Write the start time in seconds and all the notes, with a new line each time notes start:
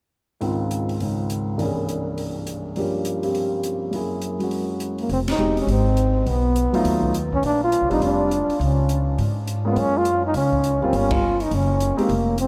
0.41 C#2 G#2 D#3 C4 F4, open hi-hat
0.71 closed hi-hat
0.89 open hi-hat
1.00 G#2 C#3 G#3 D#4, open hi-hat
1.30 closed hi-hat
1.57 C2 G2 E3 A#3 C#4, open hi-hat
1.62 G#4
1.89 closed hi-hat
2.18 open hi-hat
2.47 closed hi-hat
2.76 G2 F3 A#3 C#4 G4, open hi-hat
3.05 closed hi-hat
3.22 G3 C4 F4 G4, open hi-hat
3.35 open hi-hat
3.63 closed hi-hat
3.91 F#2 F#3 A#3 E4, open hi-hat
3.96 G#4
4.22 closed hi-hat
4.39 F#3 G#3 C#4 F#4, open hi-hat
4.51 open hi-hat
4.80 closed hi-hat
4.98 A#3, open hi-hat
5.09 F1 C4, open hi-hat
5.28 D#4, snare, ride
5.38 E1 G#3 C4 D#4 G4
5.57 C#4, open hi-hat
5.67 G#1, open hi-hat
5.71 C4
5.97 closed hi-hat
6.26 B1 B3, open hi-hat
6.56 closed hi-hat
6.73 F#3 A3 D#4 F4, muted upright bass stroke, open hi-hat
6.84 D#2, open hi-hat
7.03 kick
7.14 closed hi-hat
7.32 C#4, kick
7.43 A#1 D4, open hi-hat
7.64 F4
7.72 closed hi-hat
7.81 C2
7.89 A1 G3 C4 D4 D#4 F4, open hi-hat
8.00 F1 D4, open hi-hat
8.31 closed hi-hat
8.48 muted upright bass stroke, open hi-hat
8.59 C#2, open hi-hat
8.64 C#4
8.89 closed hi-hat
9.18 G#2, open hi-hat
9.47 closed hi-hat
9.65 G#3 A#3 C#4 F4
9.70 B3
9.76 F#2, open hi-hat
9.80 C#4
9.97 F4
10.05 closed hi-hat
10.26 D#4
10.34 C#2 C#4, open hi-hat
10.53 kick
10.64 closed hi-hat
10.82 D2 G3 A#3 C4 C#4 F4
10.93 G1 C#4, open hi-hat
11.11 F4, kick, ride
11.40 D#4, open hi-hat
11.51 F#1 C#4, open hi-hat
11.80 closed hi-hat
11.97 G#3 C4 D#4 G4, muted upright bass stroke, open hi-hat
12.02 A#3
12.09 F1, open hi-hat
12.38 C4, closed hi-hat